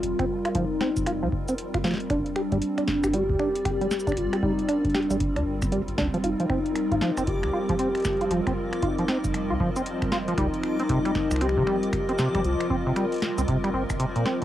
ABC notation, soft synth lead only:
X:1
M:4/4
L:1/8
Q:"Swing 16ths" 1/4=116
K:Gphr
V:1 name="Soft synth lead"
F2 E3 z3 | D4 G4 | F E D3 z3 | E4 G4 |
F2 E3 z3 | E4 G4 | F6 z2 |]